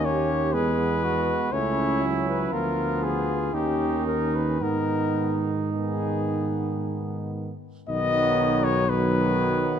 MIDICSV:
0, 0, Header, 1, 6, 480
1, 0, Start_track
1, 0, Key_signature, 5, "minor"
1, 0, Tempo, 995025
1, 736, Time_signature, 3, 2, 24, 8
1, 1705, Tempo, 1086957
1, 3625, Tempo, 1005025
1, 4538, End_track
2, 0, Start_track
2, 0, Title_t, "Cornet"
2, 0, Program_c, 0, 56
2, 24, Note_on_c, 0, 73, 75
2, 257, Note_on_c, 0, 71, 80
2, 264, Note_off_c, 0, 73, 0
2, 736, Note_on_c, 0, 73, 84
2, 743, Note_off_c, 0, 71, 0
2, 1015, Note_off_c, 0, 73, 0
2, 1097, Note_on_c, 0, 71, 69
2, 1220, Note_on_c, 0, 70, 73
2, 1227, Note_off_c, 0, 71, 0
2, 1463, Note_on_c, 0, 68, 70
2, 1470, Note_off_c, 0, 70, 0
2, 1709, Note_on_c, 0, 67, 70
2, 1715, Note_off_c, 0, 68, 0
2, 1940, Note_off_c, 0, 67, 0
2, 1942, Note_on_c, 0, 70, 64
2, 2067, Note_on_c, 0, 71, 64
2, 2074, Note_off_c, 0, 70, 0
2, 2188, Note_on_c, 0, 70, 79
2, 2195, Note_off_c, 0, 71, 0
2, 2536, Note_off_c, 0, 70, 0
2, 2672, Note_on_c, 0, 68, 55
2, 3379, Note_off_c, 0, 68, 0
2, 3628, Note_on_c, 0, 75, 96
2, 3986, Note_on_c, 0, 73, 87
2, 3993, Note_off_c, 0, 75, 0
2, 4107, Note_on_c, 0, 71, 88
2, 4115, Note_off_c, 0, 73, 0
2, 4538, Note_off_c, 0, 71, 0
2, 4538, End_track
3, 0, Start_track
3, 0, Title_t, "Flugelhorn"
3, 0, Program_c, 1, 56
3, 23, Note_on_c, 1, 67, 65
3, 262, Note_on_c, 1, 68, 70
3, 269, Note_off_c, 1, 67, 0
3, 502, Note_on_c, 1, 66, 59
3, 509, Note_off_c, 1, 68, 0
3, 734, Note_off_c, 1, 66, 0
3, 737, Note_on_c, 1, 64, 73
3, 1219, Note_on_c, 1, 65, 63
3, 1226, Note_off_c, 1, 64, 0
3, 1706, Note_on_c, 1, 63, 62
3, 1713, Note_off_c, 1, 65, 0
3, 2177, Note_off_c, 1, 63, 0
3, 2180, Note_on_c, 1, 63, 59
3, 3377, Note_off_c, 1, 63, 0
3, 3629, Note_on_c, 1, 59, 71
3, 4087, Note_off_c, 1, 59, 0
3, 4106, Note_on_c, 1, 59, 65
3, 4538, Note_off_c, 1, 59, 0
3, 4538, End_track
4, 0, Start_track
4, 0, Title_t, "Trombone section"
4, 0, Program_c, 2, 61
4, 0, Note_on_c, 2, 61, 59
4, 262, Note_on_c, 2, 59, 59
4, 263, Note_off_c, 2, 61, 0
4, 733, Note_on_c, 2, 61, 66
4, 735, Note_off_c, 2, 59, 0
4, 1196, Note_off_c, 2, 61, 0
4, 1215, Note_on_c, 2, 59, 61
4, 1703, Note_on_c, 2, 61, 58
4, 1706, Note_off_c, 2, 59, 0
4, 2170, Note_off_c, 2, 61, 0
4, 2179, Note_on_c, 2, 59, 56
4, 2591, Note_off_c, 2, 59, 0
4, 2666, Note_on_c, 2, 59, 56
4, 3464, Note_off_c, 2, 59, 0
4, 3629, Note_on_c, 2, 54, 74
4, 4087, Note_off_c, 2, 54, 0
4, 4101, Note_on_c, 2, 54, 73
4, 4538, Note_off_c, 2, 54, 0
4, 4538, End_track
5, 0, Start_track
5, 0, Title_t, "Trombone"
5, 0, Program_c, 3, 57
5, 0, Note_on_c, 3, 58, 55
5, 262, Note_on_c, 3, 56, 54
5, 269, Note_off_c, 3, 58, 0
5, 733, Note_off_c, 3, 56, 0
5, 736, Note_on_c, 3, 57, 53
5, 974, Note_on_c, 3, 54, 55
5, 981, Note_off_c, 3, 57, 0
5, 1214, Note_on_c, 3, 53, 52
5, 1221, Note_off_c, 3, 54, 0
5, 1622, Note_off_c, 3, 53, 0
5, 1704, Note_on_c, 3, 51, 52
5, 2170, Note_off_c, 3, 51, 0
5, 2180, Note_on_c, 3, 51, 50
5, 2658, Note_off_c, 3, 51, 0
5, 2669, Note_on_c, 3, 51, 54
5, 3465, Note_off_c, 3, 51, 0
5, 3630, Note_on_c, 3, 51, 62
5, 4088, Note_off_c, 3, 51, 0
5, 4103, Note_on_c, 3, 51, 68
5, 4538, Note_off_c, 3, 51, 0
5, 4538, End_track
6, 0, Start_track
6, 0, Title_t, "Tuba"
6, 0, Program_c, 4, 58
6, 0, Note_on_c, 4, 39, 65
6, 261, Note_on_c, 4, 40, 62
6, 268, Note_off_c, 4, 39, 0
6, 652, Note_off_c, 4, 40, 0
6, 734, Note_on_c, 4, 37, 60
6, 1196, Note_off_c, 4, 37, 0
6, 1213, Note_on_c, 4, 38, 53
6, 1695, Note_off_c, 4, 38, 0
6, 1705, Note_on_c, 4, 39, 56
6, 2179, Note_on_c, 4, 44, 52
6, 2186, Note_off_c, 4, 39, 0
6, 3481, Note_off_c, 4, 44, 0
6, 3626, Note_on_c, 4, 35, 71
6, 4538, Note_off_c, 4, 35, 0
6, 4538, End_track
0, 0, End_of_file